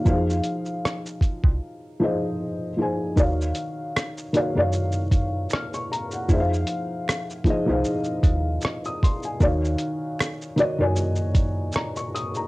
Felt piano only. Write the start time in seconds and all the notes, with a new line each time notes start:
0.05 F3 D#4 F#4 C5
0.10 G#4 F5
2.00 F3 D#4 G#4 C5
2.04 D#5
2.77 F3 D#4 G#4 C5
2.82 G#5
3.16 D#3 D#4 F#4 C#5
3.21 F5
4.33 D#3 D#4 F#4 C#5
4.38 F5
4.55 D#3 D#4 F#4 C#5
4.60 F5
5.53 F6
5.74 C#6
5.92 A#5
6.13 F#5
6.28 F3 D#4 G#4 C5
6.33 E5
6.40 F5
7.45 F3 D#4 G#4 C5
7.50 D#5
7.66 F3 D#4 G#4 C5
7.71 F5
8.86 D#6
9.04 C6
9.25 G#5
9.40 D#3 D#4 F#4 C#5
9.45 F5
10.56 D#3 D#4 F#4
10.60 C#5 D#5
10.78 D#3 D#4 F#4 C#5
10.83 G#5
11.75 A#5
11.97 C#6
12.15 D#6
12.37 A#5